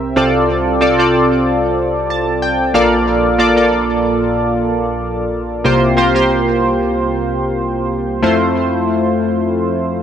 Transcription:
synth keys
Already playing: C2 C3 C4 G4 A#4 E5
0.16 C2 C3 C4 F4 A4 D5
0.81 C4 F4 A4 D5
0.99 C4 F4 A4 D5
2.10 A5
2.42 G5
2.74 A#1 A#2 A#3 F4 A4 D5 F5
3.38 A#3 F4 A4 D5
3.56 A#3 F4 A4 D5
5.64 C2 C3 A#3 F4 G4 C5
5.97 A#3 F4 G4 C5
6.14 A#3 F4 G4 C5
8.23 F2 A3 C4 E4 F4 C5

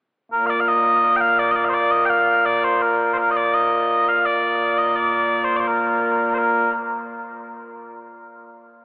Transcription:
bagpipes
0.32 A#2 A#3 A#4
0.46 D5 F5
0.60 F5
0.68 D#5
1.16 G5
1.21 F5
1.39 D5
1.51 D#5
1.56 D5
1.65 F5
1.69 C5
1.74 D5
1.91 D#5
2.05 G5
2.10 F5
2.45 D5
2.64 C5
2.82 A#4
3.14 C5
3.18 A#4
3.31 D#5
3.37 D5
3.54 D#5
4.08 F5
4.25 D5
4.78 D#5
4.96 D5
5.44 C5
5.56 C5 D5
5.68 A#4
6.35 A#4 C5

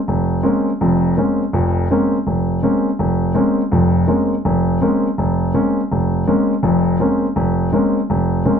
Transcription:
grand piano
0.08 F1
0.43 G#3 A#3 C4 C#4
0.81 F1 F2
1.17 G#3 A#3 C4 C#4
1.53 F1 F2
1.91 G#3 A#3 C4 C#4
2.27 F1
2.63 G#3 A#3 C4 C#4
2.99 F1
3.35 G#3 A#3 C4 C#4
3.72 F1 F2
4.08 G#3 A#3 C4 C#4
4.45 F1
4.82 G#3 A#3 C4 C#4
5.18 F1
5.54 G#3 A#3 C4 C#4
5.92 F1
6.27 G#3 A#3 C4 C#4
6.63 F1 F2
7.00 G#3 A#3 C4 C#4
7.36 F1
7.73 G#3 A#3 C4 C#4
8.10 F1
8.45 G#3 A#3 C4 C#4

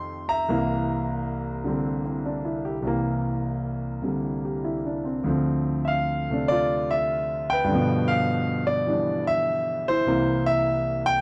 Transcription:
grand piano
Already playing: F2 C3 D#3 A3 C6
0.29 E5 A#5
0.48 C2 C3 E3 A#3
1.64 D3 G3 C4
2.05 C4
2.26 D4
2.45 E4
2.65 G4
2.82 C2 C3 E3
2.87 A#3
4.02 C3 D3 G3
4.45 G4
4.65 E4
4.86 D4
5.05 C4
5.24 D2 D3 F3
5.28 C4
5.85 E5 F5
6.30 C3 A3 D4
6.48 F4 D5
6.91 E5
7.50 B4 G5
7.64 G2 D3
7.72 B2 F3
8.08 F5
8.67 D5
8.87 E3 G3 D4
9.27 E5
9.88 E4 C5
10.06 C2 C3 E3 A#3
10.46 E5
11.06 G5

